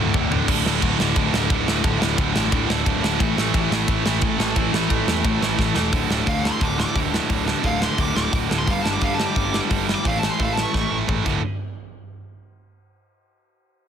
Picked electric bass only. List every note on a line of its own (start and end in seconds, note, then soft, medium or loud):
0.14 0.26 D1 medium
0.31 0.43 D1 medium
0.48 0.61 D1 loud
0.65 0.78 D1 medium
0.82 0.95 D1 loud
0.99 1.12 D1 medium
1.16 1.29 D1 loud
1.33 1.46 D1 medium
1.50 1.63 D1 loud
1.67 1.80 D1 loud
1.84 1.97 D1 loud
2.01 2.14 D1 loud
2.18 2.31 D1 medium
2.35 2.48 A1 medium
2.52 2.65 D1 medium
2.70 2.83 D1 medium
2.86 2.99 D1 medium
3.04 3.17 D1 loud
3.20 3.33 A1 loud
3.37 3.50 A1 loud
3.54 3.67 A1 loud
3.71 3.84 A1 loud
3.88 4.01 A1 medium
4.05 4.18 A1 medium
4.22 4.35 A1 loud
4.39 4.52 A1 loud
4.56 4.69 A1 medium
4.73 4.86 A1 medium
4.90 5.03 A1 medium
5.07 5.20 E2 loud
5.24 5.38 A1 loud
5.41 5.54 A1 medium
5.59 5.72 A1 medium
5.76 5.89 E1 loud
5.93 6.04 D1 medium
6.10 6.21 D1 medium
6.27 6.49 D2 medium
6.61 6.83 D1 medium
6.95 7.18 D1 medium
7.29 7.52 D1 medium
7.64 7.86 D1 medium
7.98 8.10 D1 medium
8.15 8.26 D1 medium
8.33 8.44 D1 medium
8.50 8.67 D1 medium
8.67 8.79 G1 medium
8.85 8.96 G1 medium
9.02 9.24 G2 medium
9.36 9.59 G1 medium
9.71 9.93 G1 medium
10.05 10.28 A1 medium
10.39 10.62 A1 medium
10.74 10.85 A1 medium
10.91 11.02 A1 medium
11.09 11.20 A1 medium
11.26 11.42 D1 loud